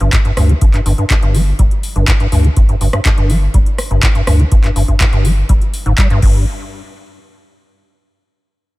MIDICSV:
0, 0, Header, 1, 4, 480
1, 0, Start_track
1, 0, Tempo, 487805
1, 604, Time_signature, 4, 2, 24, 8
1, 8648, End_track
2, 0, Start_track
2, 0, Title_t, "Acid bass"
2, 0, Program_c, 0, 38
2, 6, Note_on_c, 0, 43, 77
2, 104, Note_off_c, 0, 43, 0
2, 124, Note_on_c, 0, 43, 82
2, 164, Note_off_c, 0, 43, 0
2, 246, Note_on_c, 0, 43, 78
2, 311, Note_off_c, 0, 43, 0
2, 364, Note_on_c, 0, 43, 77
2, 486, Note_on_c, 0, 55, 105
2, 500, Note_off_c, 0, 43, 0
2, 525, Note_off_c, 0, 55, 0
2, 604, Note_on_c, 0, 43, 79
2, 644, Note_off_c, 0, 43, 0
2, 726, Note_on_c, 0, 43, 73
2, 791, Note_off_c, 0, 43, 0
2, 844, Note_on_c, 0, 43, 76
2, 911, Note_off_c, 0, 43, 0
2, 966, Note_on_c, 0, 43, 75
2, 1031, Note_off_c, 0, 43, 0
2, 1084, Note_on_c, 0, 43, 84
2, 1124, Note_off_c, 0, 43, 0
2, 1206, Note_on_c, 0, 43, 75
2, 1325, Note_on_c, 0, 55, 75
2, 1340, Note_off_c, 0, 43, 0
2, 1391, Note_off_c, 0, 55, 0
2, 1565, Note_on_c, 0, 55, 81
2, 1605, Note_off_c, 0, 55, 0
2, 1926, Note_on_c, 0, 43, 77
2, 2024, Note_off_c, 0, 43, 0
2, 2045, Note_on_c, 0, 43, 82
2, 2085, Note_off_c, 0, 43, 0
2, 2166, Note_on_c, 0, 43, 78
2, 2231, Note_off_c, 0, 43, 0
2, 2285, Note_on_c, 0, 43, 79
2, 2406, Note_on_c, 0, 55, 102
2, 2421, Note_off_c, 0, 43, 0
2, 2445, Note_off_c, 0, 55, 0
2, 2525, Note_on_c, 0, 43, 82
2, 2565, Note_off_c, 0, 43, 0
2, 2646, Note_on_c, 0, 43, 77
2, 2711, Note_off_c, 0, 43, 0
2, 2764, Note_on_c, 0, 43, 77
2, 2831, Note_off_c, 0, 43, 0
2, 2886, Note_on_c, 0, 43, 76
2, 2951, Note_off_c, 0, 43, 0
2, 3004, Note_on_c, 0, 43, 80
2, 3044, Note_off_c, 0, 43, 0
2, 3126, Note_on_c, 0, 43, 76
2, 3244, Note_on_c, 0, 55, 77
2, 3259, Note_off_c, 0, 43, 0
2, 3311, Note_off_c, 0, 55, 0
2, 3484, Note_on_c, 0, 55, 82
2, 3524, Note_off_c, 0, 55, 0
2, 3845, Note_on_c, 0, 43, 78
2, 3943, Note_off_c, 0, 43, 0
2, 3964, Note_on_c, 0, 43, 82
2, 4004, Note_off_c, 0, 43, 0
2, 4085, Note_on_c, 0, 43, 80
2, 4151, Note_off_c, 0, 43, 0
2, 4204, Note_on_c, 0, 43, 79
2, 4325, Note_on_c, 0, 55, 105
2, 4340, Note_off_c, 0, 43, 0
2, 4365, Note_off_c, 0, 55, 0
2, 4444, Note_on_c, 0, 43, 83
2, 4484, Note_off_c, 0, 43, 0
2, 4565, Note_on_c, 0, 43, 77
2, 4631, Note_off_c, 0, 43, 0
2, 4684, Note_on_c, 0, 43, 76
2, 4751, Note_off_c, 0, 43, 0
2, 4805, Note_on_c, 0, 43, 75
2, 4871, Note_off_c, 0, 43, 0
2, 4924, Note_on_c, 0, 43, 81
2, 4964, Note_off_c, 0, 43, 0
2, 5045, Note_on_c, 0, 43, 76
2, 5164, Note_on_c, 0, 55, 77
2, 5178, Note_off_c, 0, 43, 0
2, 5231, Note_off_c, 0, 55, 0
2, 5404, Note_on_c, 0, 55, 83
2, 5444, Note_off_c, 0, 55, 0
2, 5765, Note_on_c, 0, 44, 77
2, 5831, Note_off_c, 0, 44, 0
2, 5884, Note_on_c, 0, 55, 83
2, 5984, Note_off_c, 0, 55, 0
2, 6005, Note_on_c, 0, 43, 102
2, 6103, Note_off_c, 0, 43, 0
2, 6124, Note_on_c, 0, 43, 97
2, 6347, Note_off_c, 0, 43, 0
2, 8648, End_track
3, 0, Start_track
3, 0, Title_t, "Sub bass"
3, 0, Program_c, 1, 38
3, 6, Note_on_c, 1, 31, 89
3, 87, Note_off_c, 1, 31, 0
3, 364, Note_on_c, 1, 38, 91
3, 529, Note_off_c, 1, 38, 0
3, 605, Note_on_c, 1, 31, 97
3, 687, Note_off_c, 1, 31, 0
3, 844, Note_on_c, 1, 31, 86
3, 927, Note_off_c, 1, 31, 0
3, 1206, Note_on_c, 1, 31, 92
3, 1504, Note_off_c, 1, 31, 0
3, 1565, Note_on_c, 1, 29, 77
3, 1647, Note_off_c, 1, 29, 0
3, 1926, Note_on_c, 1, 31, 93
3, 2007, Note_off_c, 1, 31, 0
3, 2284, Note_on_c, 1, 38, 93
3, 2449, Note_off_c, 1, 38, 0
3, 2524, Note_on_c, 1, 31, 99
3, 2607, Note_off_c, 1, 31, 0
3, 2764, Note_on_c, 1, 31, 85
3, 2847, Note_off_c, 1, 31, 0
3, 3125, Note_on_c, 1, 31, 92
3, 3424, Note_off_c, 1, 31, 0
3, 3484, Note_on_c, 1, 29, 81
3, 3567, Note_off_c, 1, 29, 0
3, 3845, Note_on_c, 1, 31, 94
3, 3926, Note_off_c, 1, 31, 0
3, 4204, Note_on_c, 1, 38, 94
3, 4369, Note_off_c, 1, 38, 0
3, 4444, Note_on_c, 1, 31, 101
3, 4527, Note_off_c, 1, 31, 0
3, 4684, Note_on_c, 1, 31, 86
3, 4767, Note_off_c, 1, 31, 0
3, 5046, Note_on_c, 1, 31, 93
3, 5344, Note_off_c, 1, 31, 0
3, 5404, Note_on_c, 1, 29, 80
3, 5487, Note_off_c, 1, 29, 0
3, 5765, Note_on_c, 1, 31, 94
3, 5846, Note_off_c, 1, 31, 0
3, 6124, Note_on_c, 1, 31, 97
3, 6347, Note_off_c, 1, 31, 0
3, 8648, End_track
4, 0, Start_track
4, 0, Title_t, "Drums"
4, 6, Note_on_c, 9, 42, 41
4, 104, Note_off_c, 9, 42, 0
4, 124, Note_on_c, 9, 42, 92
4, 125, Note_on_c, 9, 36, 120
4, 127, Note_on_c, 9, 39, 117
4, 223, Note_off_c, 9, 36, 0
4, 223, Note_off_c, 9, 42, 0
4, 225, Note_off_c, 9, 39, 0
4, 246, Note_on_c, 9, 42, 41
4, 344, Note_off_c, 9, 42, 0
4, 364, Note_on_c, 9, 37, 75
4, 364, Note_on_c, 9, 46, 106
4, 463, Note_off_c, 9, 37, 0
4, 463, Note_off_c, 9, 46, 0
4, 486, Note_on_c, 9, 42, 40
4, 584, Note_off_c, 9, 42, 0
4, 604, Note_on_c, 9, 42, 91
4, 605, Note_on_c, 9, 36, 121
4, 703, Note_off_c, 9, 36, 0
4, 703, Note_off_c, 9, 42, 0
4, 726, Note_on_c, 9, 42, 38
4, 728, Note_on_c, 9, 39, 36
4, 824, Note_off_c, 9, 42, 0
4, 826, Note_off_c, 9, 39, 0
4, 844, Note_on_c, 9, 46, 107
4, 943, Note_off_c, 9, 46, 0
4, 966, Note_on_c, 9, 42, 38
4, 1064, Note_off_c, 9, 42, 0
4, 1084, Note_on_c, 9, 42, 93
4, 1085, Note_on_c, 9, 36, 119
4, 1087, Note_on_c, 9, 39, 122
4, 1183, Note_off_c, 9, 36, 0
4, 1183, Note_off_c, 9, 42, 0
4, 1185, Note_off_c, 9, 39, 0
4, 1206, Note_on_c, 9, 42, 39
4, 1304, Note_off_c, 9, 42, 0
4, 1324, Note_on_c, 9, 46, 101
4, 1423, Note_off_c, 9, 46, 0
4, 1564, Note_on_c, 9, 36, 119
4, 1564, Note_on_c, 9, 42, 93
4, 1663, Note_off_c, 9, 36, 0
4, 1663, Note_off_c, 9, 42, 0
4, 1686, Note_on_c, 9, 42, 38
4, 1784, Note_off_c, 9, 42, 0
4, 1804, Note_on_c, 9, 46, 108
4, 1903, Note_off_c, 9, 46, 0
4, 1925, Note_on_c, 9, 42, 40
4, 2024, Note_off_c, 9, 42, 0
4, 2044, Note_on_c, 9, 36, 126
4, 2044, Note_on_c, 9, 42, 91
4, 2046, Note_on_c, 9, 39, 121
4, 2143, Note_off_c, 9, 36, 0
4, 2143, Note_off_c, 9, 42, 0
4, 2145, Note_off_c, 9, 39, 0
4, 2166, Note_on_c, 9, 42, 39
4, 2264, Note_off_c, 9, 42, 0
4, 2284, Note_on_c, 9, 46, 110
4, 2383, Note_off_c, 9, 46, 0
4, 2406, Note_on_c, 9, 42, 38
4, 2504, Note_off_c, 9, 42, 0
4, 2524, Note_on_c, 9, 36, 125
4, 2524, Note_on_c, 9, 42, 89
4, 2623, Note_off_c, 9, 36, 0
4, 2623, Note_off_c, 9, 42, 0
4, 2645, Note_on_c, 9, 42, 38
4, 2744, Note_off_c, 9, 42, 0
4, 2764, Note_on_c, 9, 46, 112
4, 2862, Note_off_c, 9, 46, 0
4, 2885, Note_on_c, 9, 37, 85
4, 2885, Note_on_c, 9, 42, 38
4, 2984, Note_off_c, 9, 37, 0
4, 2984, Note_off_c, 9, 42, 0
4, 3004, Note_on_c, 9, 36, 122
4, 3004, Note_on_c, 9, 42, 91
4, 3006, Note_on_c, 9, 39, 123
4, 3103, Note_off_c, 9, 36, 0
4, 3103, Note_off_c, 9, 42, 0
4, 3105, Note_off_c, 9, 39, 0
4, 3125, Note_on_c, 9, 42, 38
4, 3224, Note_off_c, 9, 42, 0
4, 3244, Note_on_c, 9, 46, 102
4, 3342, Note_off_c, 9, 46, 0
4, 3484, Note_on_c, 9, 36, 127
4, 3484, Note_on_c, 9, 42, 88
4, 3582, Note_off_c, 9, 42, 0
4, 3583, Note_off_c, 9, 36, 0
4, 3605, Note_on_c, 9, 42, 38
4, 3704, Note_off_c, 9, 42, 0
4, 3724, Note_on_c, 9, 37, 69
4, 3724, Note_on_c, 9, 46, 111
4, 3822, Note_off_c, 9, 37, 0
4, 3822, Note_off_c, 9, 46, 0
4, 3845, Note_on_c, 9, 42, 38
4, 3944, Note_off_c, 9, 42, 0
4, 3964, Note_on_c, 9, 36, 126
4, 3964, Note_on_c, 9, 42, 90
4, 3966, Note_on_c, 9, 39, 118
4, 4062, Note_off_c, 9, 42, 0
4, 4063, Note_off_c, 9, 36, 0
4, 4064, Note_off_c, 9, 39, 0
4, 4085, Note_on_c, 9, 42, 37
4, 4184, Note_off_c, 9, 42, 0
4, 4204, Note_on_c, 9, 37, 82
4, 4204, Note_on_c, 9, 46, 113
4, 4302, Note_off_c, 9, 37, 0
4, 4302, Note_off_c, 9, 46, 0
4, 4325, Note_on_c, 9, 42, 39
4, 4423, Note_off_c, 9, 42, 0
4, 4444, Note_on_c, 9, 36, 125
4, 4444, Note_on_c, 9, 42, 88
4, 4542, Note_off_c, 9, 42, 0
4, 4543, Note_off_c, 9, 36, 0
4, 4565, Note_on_c, 9, 42, 37
4, 4567, Note_on_c, 9, 39, 36
4, 4663, Note_off_c, 9, 42, 0
4, 4666, Note_off_c, 9, 39, 0
4, 4684, Note_on_c, 9, 46, 110
4, 4782, Note_off_c, 9, 46, 0
4, 4805, Note_on_c, 9, 36, 65
4, 4805, Note_on_c, 9, 42, 37
4, 4904, Note_off_c, 9, 36, 0
4, 4904, Note_off_c, 9, 42, 0
4, 4924, Note_on_c, 9, 36, 123
4, 4924, Note_on_c, 9, 42, 85
4, 4926, Note_on_c, 9, 39, 119
4, 5022, Note_off_c, 9, 42, 0
4, 5023, Note_off_c, 9, 36, 0
4, 5024, Note_off_c, 9, 39, 0
4, 5045, Note_on_c, 9, 42, 36
4, 5144, Note_off_c, 9, 42, 0
4, 5164, Note_on_c, 9, 46, 103
4, 5262, Note_off_c, 9, 46, 0
4, 5404, Note_on_c, 9, 36, 124
4, 5404, Note_on_c, 9, 42, 87
4, 5502, Note_off_c, 9, 42, 0
4, 5503, Note_off_c, 9, 36, 0
4, 5525, Note_on_c, 9, 42, 38
4, 5624, Note_off_c, 9, 42, 0
4, 5644, Note_on_c, 9, 46, 108
4, 5742, Note_off_c, 9, 46, 0
4, 5766, Note_on_c, 9, 42, 38
4, 5864, Note_off_c, 9, 42, 0
4, 5884, Note_on_c, 9, 36, 123
4, 5884, Note_on_c, 9, 42, 86
4, 5886, Note_on_c, 9, 39, 114
4, 5983, Note_off_c, 9, 36, 0
4, 5983, Note_off_c, 9, 42, 0
4, 5985, Note_off_c, 9, 39, 0
4, 6006, Note_on_c, 9, 42, 37
4, 6104, Note_off_c, 9, 42, 0
4, 6124, Note_on_c, 9, 36, 112
4, 6124, Note_on_c, 9, 49, 86
4, 6223, Note_off_c, 9, 36, 0
4, 6223, Note_off_c, 9, 49, 0
4, 8648, End_track
0, 0, End_of_file